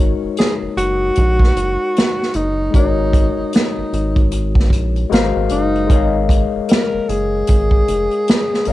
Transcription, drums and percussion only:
0.37 snare, closed hi-hat
0.78 closed hi-hat
1.16 kick, closed hi-hat
1.40 kick, snare
1.57 closed hi-hat
1.97 snare, closed hi-hat
2.23 snare
2.34 closed hi-hat
2.74 kick, closed hi-hat
3.13 kick, closed hi-hat
3.53 snare, closed hi-hat
3.93 closed hi-hat
4.16 kick, closed hi-hat
4.31 closed hi-hat
4.55 kick
4.59 snare
4.70 kick, closed hi-hat
4.96 closed hi-hat
5.12 snare, closed hi-hat
5.49 closed hi-hat
5.75 closed hi-hat
5.90 kick, closed hi-hat
6.29 kick, closed hi-hat
6.69 snare, closed hi-hat
7.09 closed hi-hat
7.47 kick, closed hi-hat
7.71 kick
7.88 closed hi-hat
8.11 closed hi-hat
8.28 snare, closed hi-hat
8.54 snare
8.65 closed hi-hat

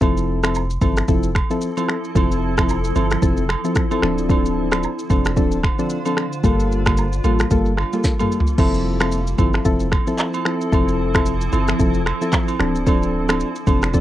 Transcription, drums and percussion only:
0.01 kick, high agogo, shaker
0.17 shaker
0.43 finger snap, cross-stick, high agogo, shaker
0.55 low woodblock, shaker
0.70 shaker
0.81 kick, high agogo, shaker
0.96 finger snap, cross-stick, shaker
1.08 kick, shaker
1.23 shaker
1.35 finger snap, kick, cross-stick, high agogo
1.50 shaker
1.61 shaker
1.77 high agogo, shaker
1.88 finger snap, cross-stick
2.04 shaker
2.15 kick, high agogo, shaker
2.31 shaker
2.57 finger snap, kick, cross-stick, high agogo, shaker
2.69 low woodblock, shaker
2.84 shaker
2.95 high agogo, shaker
3.11 finger snap, cross-stick, shaker
3.22 kick, shaker
3.37 shaker
3.49 finger snap, cross-stick, high agogo
3.65 shaker
3.75 finger snap, kick, cross-stick, shaker
3.91 high agogo, shaker
4.02 finger snap, cross-stick
4.18 shaker
4.30 kick, high agogo, shaker
4.46 shaker
4.72 finger snap, cross-stick, high agogo, shaker
4.83 low woodblock, shaker
4.99 shaker
5.10 kick, high agogo, shaker
5.25 finger snap, cross-stick, shaker
5.37 kick, shaker
5.51 shaker
5.63 finger snap, kick, cross-stick, high agogo
5.79 shaker
5.89 shaker
6.05 high agogo, shaker
6.17 finger snap, cross-stick
6.33 shaker
6.44 kick, high agogo, shaker
6.60 shaker
6.72 shaker
6.86 finger snap, kick, cross-stick, high agogo, shaker
6.97 low woodblock, shaker
7.13 shaker
7.24 high agogo, shaker
7.39 finger snap, cross-stick, shaker
7.51 kick, shaker
7.66 shaker
7.77 finger snap, cross-stick, high agogo
7.93 shaker
8.04 kick, snare, shaker
8.20 mid tom, high agogo, shaker
8.32 shaker
8.40 floor tom
8.47 shaker
8.58 kick, crash, high agogo, shaker
8.74 shaker
9.00 finger snap, cross-stick, high agogo, shaker
9.12 shaker
9.27 shaker
9.38 kick, high agogo, shaker
9.53 finger snap, cross-stick, shaker
9.65 kick, shaker
9.80 shaker
9.92 finger snap, kick, cross-stick, high agogo
10.07 shaker
10.18 clap, low woodblock, shaker
10.34 high agogo, shaker
10.45 finger snap, cross-stick
10.61 shaker
10.72 kick, high agogo, shaker
10.88 shaker
11.14 finger snap, kick, cross-stick, high agogo, shaker
11.26 shaker
11.41 shaker
11.52 high agogo, shaker
11.68 finger snap, cross-stick, shaker
11.79 kick, shaker
11.94 shaker
12.06 finger snap, cross-stick, high agogo
12.22 shaker
12.32 finger snap, kick, cross-stick, clap, low woodblock, shaker
12.48 high agogo, shaker
12.60 finger snap, cross-stick
12.76 shaker
12.87 kick, high agogo, shaker
13.03 shaker
13.29 finger snap, cross-stick, high agogo, shaker
13.40 shaker
13.56 shaker
13.67 kick, high agogo, shaker
13.82 finger snap, cross-stick, shaker
13.94 kick, shaker

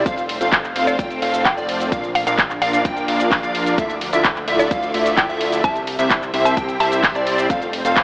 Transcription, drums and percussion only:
0.06 kick, closed hi-hat, ride, cabasa
0.18 closed hi-hat, cabasa
0.29 open hi-hat, ride
0.41 closed hi-hat, cabasa
0.52 kick, clap, closed hi-hat, ride, cabasa
0.64 clap, cabasa
0.76 open hi-hat, ride
0.87 closed hi-hat, cabasa
0.99 kick, closed hi-hat, ride, cabasa
1.11 closed hi-hat, cabasa
1.22 open hi-hat, ride
1.34 closed hi-hat, cabasa
1.45 kick, clap, closed hi-hat, ride, cabasa
1.58 cabasa
1.69 open hi-hat, ride
1.80 closed hi-hat, cabasa
1.92 kick, closed hi-hat, ride, cabasa
2.04 closed hi-hat, cabasa
2.15 open hi-hat, ride
2.27 closed hi-hat, cabasa
2.38 kick, clap, closed hi-hat, ride, cabasa
2.50 clap, cabasa
2.62 open hi-hat, ride
2.73 closed hi-hat, cabasa
2.85 kick, closed hi-hat, ride, cabasa
2.97 closed hi-hat, cabasa
3.08 open hi-hat, ride
3.20 closed hi-hat, cabasa
3.31 kick, clap, open hi-hat, ride, cabasa
3.43 closed hi-hat, cabasa
3.55 open hi-hat, ride
3.66 closed hi-hat, cabasa
3.78 kick, closed hi-hat, ride, cabasa
3.90 closed hi-hat, cabasa
4.01 open hi-hat, ride
4.13 closed hi-hat, cabasa
4.24 kick, clap, closed hi-hat, ride, cabasa
4.36 clap, cabasa
4.48 open hi-hat, ride
4.59 closed hi-hat, cabasa
4.71 kick, closed hi-hat, ride, cabasa
4.83 closed hi-hat, cabasa
4.94 open hi-hat, ride
5.06 closed hi-hat, cabasa
5.17 kick, clap, closed hi-hat, ride, cabasa
5.30 cabasa
5.41 open hi-hat, ride
5.52 closed hi-hat, cabasa
5.64 kick, closed hi-hat, ride, cabasa
5.76 closed hi-hat, cabasa
5.87 open hi-hat, ride
5.99 closed hi-hat, cabasa
6.10 kick, clap, closed hi-hat, ride, cabasa
6.22 clap, cabasa
6.34 open hi-hat, ride
6.45 closed hi-hat, cabasa
6.57 kick, closed hi-hat, ride, cabasa
6.69 closed hi-hat, cabasa
6.80 open hi-hat, ride
6.92 closed hi-hat, cabasa
7.03 kick, clap, open hi-hat, ride, cabasa
7.15 closed hi-hat, cabasa
7.27 open hi-hat, ride
7.38 closed hi-hat, cabasa
7.50 kick, closed hi-hat, ride, cabasa
7.62 closed hi-hat, cabasa
7.73 open hi-hat, ride
7.85 closed hi-hat, cabasa
7.96 kick, clap, closed hi-hat, ride, cabasa

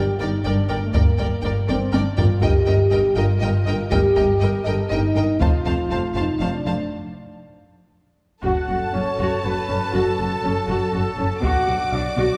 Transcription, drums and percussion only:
0.95 taiko
1.69 taiko high
1.94 taiko high
2.18 taiko low
2.43 taiko
3.92 taiko
5.41 taiko
8.44 taiko
9.19 taiko
11.44 taiko

